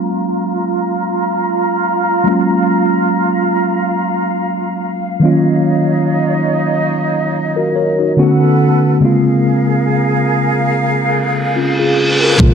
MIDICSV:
0, 0, Header, 1, 6, 480
1, 0, Start_track
1, 0, Key_signature, -5, "minor"
1, 0, Tempo, 845070
1, 1283, Time_signature, 4, 2, 24, 8
1, 7123, End_track
2, 0, Start_track
2, 0, Title_t, "Flute section"
2, 0, Program_c, 0, 73
2, 0, Note_on_c, 0, 65, 68
2, 0, Note_on_c, 0, 77, 66
2, 0, Note_on_c, 0, 82, 77
2, 2779, Note_off_c, 0, 82, 0
2, 2784, Note_off_c, 0, 65, 0
2, 2960, Note_on_c, 0, 63, 72
2, 2960, Note_on_c, 0, 73, 66
2, 2960, Note_on_c, 0, 75, 78
2, 4503, Note_off_c, 0, 77, 0
2, 4624, Note_off_c, 0, 73, 0
2, 4624, Note_off_c, 0, 75, 0
2, 4625, Note_off_c, 0, 63, 0
2, 4641, Note_on_c, 0, 69, 65
2, 4641, Note_on_c, 0, 71, 60
2, 4641, Note_on_c, 0, 78, 76
2, 5117, Note_off_c, 0, 69, 0
2, 5117, Note_off_c, 0, 71, 0
2, 5117, Note_off_c, 0, 78, 0
2, 5120, Note_on_c, 0, 68, 73
2, 5121, Note_on_c, 0, 77, 76
2, 5122, Note_on_c, 0, 70, 64
2, 6904, Note_off_c, 0, 68, 0
2, 7023, Note_off_c, 0, 70, 0
2, 7023, Note_off_c, 0, 77, 0
2, 7041, Note_on_c, 0, 70, 67
2, 7042, Note_on_c, 0, 68, 75
2, 7123, Note_off_c, 0, 68, 0
2, 7123, Note_off_c, 0, 70, 0
2, 7123, End_track
3, 0, Start_track
3, 0, Title_t, "Tine electric piano"
3, 0, Program_c, 1, 4
3, 0, Control_c, 1, 64, 127
3, 0, Note_on_c, 1, 54, 72
3, 0, Note_on_c, 1, 56, 66
3, 0, Note_on_c, 1, 58, 65
3, 0, Note_on_c, 1, 61, 67
3, 0, Note_on_c, 1, 65, 78
3, 1254, Note_off_c, 1, 54, 0
3, 1258, Note_off_c, 1, 56, 0
3, 1262, Note_off_c, 1, 58, 0
3, 1266, Note_off_c, 1, 61, 0
3, 1272, Note_on_c, 1, 54, 73
3, 1280, Note_on_c, 1, 56, 66
3, 1286, Note_on_c, 1, 58, 62
3, 1288, Note_off_c, 1, 65, 0
3, 1294, Note_on_c, 1, 61, 65
3, 1302, Note_on_c, 1, 65, 81
3, 2934, Note_off_c, 1, 54, 0
3, 2938, Note_off_c, 1, 56, 0
3, 2942, Note_off_c, 1, 58, 0
3, 2945, Note_off_c, 1, 61, 0
3, 2949, Note_off_c, 1, 65, 0
3, 2952, Note_on_c, 1, 51, 74
3, 2960, Note_on_c, 1, 54, 70
3, 2967, Note_on_c, 1, 58, 66
3, 2969, Control_c, 1, 64, 0
3, 2974, Note_on_c, 1, 61, 67
3, 2982, Note_on_c, 1, 65, 79
3, 3062, Control_c, 1, 64, 127
3, 4149, Note_off_c, 1, 65, 0
3, 4296, Note_on_c, 1, 70, 60
3, 4300, Note_on_c, 1, 66, 50
3, 4399, Note_off_c, 1, 70, 0
3, 4401, Note_off_c, 1, 66, 0
3, 4406, Note_on_c, 1, 73, 65
3, 4410, Note_on_c, 1, 70, 55
3, 4528, Note_off_c, 1, 73, 0
3, 4530, Note_off_c, 1, 70, 0
3, 4536, Note_on_c, 1, 66, 56
3, 4539, Note_on_c, 1, 63, 49
3, 4614, Note_off_c, 1, 51, 0
3, 4618, Note_off_c, 1, 54, 0
3, 4622, Note_off_c, 1, 58, 0
3, 4626, Note_off_c, 1, 61, 0
3, 4639, Note_on_c, 1, 50, 72
3, 4642, Note_on_c, 1, 57, 65
3, 4646, Note_off_c, 1, 66, 0
3, 4646, Note_on_c, 1, 59, 66
3, 4649, Control_c, 1, 64, 0
3, 4650, Note_on_c, 1, 61, 64
3, 4653, Note_on_c, 1, 66, 82
3, 4735, Control_c, 1, 64, 127
3, 4764, Note_off_c, 1, 63, 0
3, 5113, Note_on_c, 1, 49, 74
3, 5119, Note_on_c, 1, 56, 68
3, 5121, Note_off_c, 1, 50, 0
3, 5122, Note_off_c, 1, 57, 0
3, 5124, Note_off_c, 1, 59, 0
3, 5126, Note_off_c, 1, 61, 0
3, 5126, Note_on_c, 1, 58, 68
3, 5128, Note_off_c, 1, 66, 0
3, 5130, Control_c, 1, 64, 0
3, 5135, Note_on_c, 1, 60, 69
3, 5141, Note_on_c, 1, 65, 81
3, 5221, Control_c, 1, 64, 127
3, 6546, Note_off_c, 1, 60, 0
3, 6549, Note_off_c, 1, 65, 0
3, 6567, Note_on_c, 1, 65, 58
3, 6570, Note_on_c, 1, 61, 50
3, 6688, Note_off_c, 1, 65, 0
3, 6690, Note_off_c, 1, 61, 0
3, 6697, Note_on_c, 1, 68, 65
3, 6700, Note_on_c, 1, 65, 54
3, 6922, Note_off_c, 1, 68, 0
3, 6924, Note_off_c, 1, 65, 0
3, 6936, Note_on_c, 1, 70, 59
3, 7015, Note_off_c, 1, 49, 0
3, 7018, Note_off_c, 1, 56, 0
3, 7022, Note_off_c, 1, 58, 0
3, 7031, Note_on_c, 1, 49, 74
3, 7040, Note_on_c, 1, 56, 67
3, 7046, Note_on_c, 1, 58, 67
3, 7050, Control_c, 1, 64, 0
3, 7054, Note_on_c, 1, 48, 68
3, 7061, Note_on_c, 1, 65, 85
3, 7123, Note_off_c, 1, 48, 0
3, 7123, Note_off_c, 1, 49, 0
3, 7123, Note_off_c, 1, 56, 0
3, 7123, Note_off_c, 1, 58, 0
3, 7123, Note_off_c, 1, 65, 0
3, 7123, Note_off_c, 1, 70, 0
3, 7123, End_track
4, 0, Start_track
4, 0, Title_t, "Fingered electric bass"
4, 0, Program_c, 2, 33
4, 7045, Note_on_c, 2, 34, 94
4, 7123, Note_off_c, 2, 34, 0
4, 7123, End_track
5, 0, Start_track
5, 0, Title_t, "Reverse cymbal"
5, 0, Program_c, 3, 119
5, 6082, Note_on_c, 3, 60, 80
5, 7042, Note_off_c, 3, 60, 0
5, 7123, End_track
6, 0, Start_track
6, 0, Title_t, "Drums"
6, 7043, Note_on_c, 9, 36, 114
6, 7099, Note_off_c, 9, 36, 0
6, 7123, End_track
0, 0, End_of_file